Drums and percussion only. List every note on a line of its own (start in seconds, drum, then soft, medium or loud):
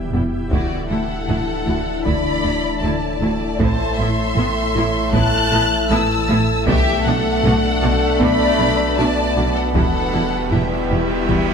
0.13 taiko low medium
0.51 taiko medium
1.28 taiko low-mid medium
2.06 taiko medium
3.60 taiko loud
4.37 taiko low-mid medium
5.13 taiko medium
6.67 taiko loud
7.44 taiko low-mid medium
8.21 taiko medium
9.75 taiko loud
10.52 taiko low-mid medium
11.29 taiko medium